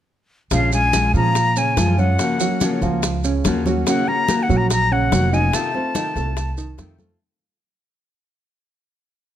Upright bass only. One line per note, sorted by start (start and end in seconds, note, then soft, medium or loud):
0.51 1.10 A#1 medium
1.14 1.73 A#2 medium
1.77 2.14 F#2 medium
2.82 3.41 C#2 medium
3.45 3.82 D#2 medium
4.49 5.08 A#1 medium
5.12 5.49 F1 medium
6.16 6.74 C2 medium
6.78 7.15 F2 medium